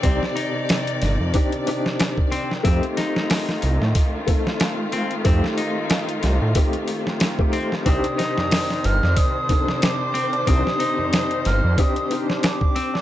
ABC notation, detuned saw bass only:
X:1
M:4/4
L:1/16
Q:"Swing 16ths" 1/4=92
K:Cdor
V:1 name="Detuned saw bass" clef=bass
C,, z4 z G,,, F,, z8 | F,, z4 z C,, A,, z8 | F,, z4 z C,, A,, z8 | C,, z4 z G,,, F,, z8 |
C,, z4 z G,,, F,, z8 |]